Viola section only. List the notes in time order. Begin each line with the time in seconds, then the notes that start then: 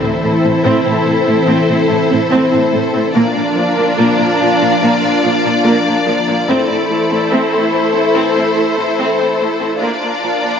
Already playing: E4
0.03 C4
0.24 A3
0.44 C4
0.65 C4
0.86 C4
1.07 A3
1.26 C4
1.48 C4
1.69 C4
1.90 A3
2.10 C4
2.31 C4
2.52 C4
2.73 A3
2.94 C4
3.15 A#3 D4
3.36 A#3
3.57 F3
3.78 A#3
3.98 A#3
4.19 A#3
4.41 F3
4.61 A#3
4.82 A#3
5.03 A#3
5.24 F3
5.45 A#3
5.65 A#3
5.86 A#3
6.07 F3
6.28 A#3
6.48 C4 E4
6.70 C4
6.91 A3
7.11 C4
7.32 C4
7.53 C4
7.73 A3
7.94 C4
8.15 C4
8.36 C4
8.57 A3
8.78 C4
8.99 C4
9.19 C4
9.40 A3
9.61 C4
9.82 A#3 D4
10.03 A#3
10.23 F3
10.44 A#3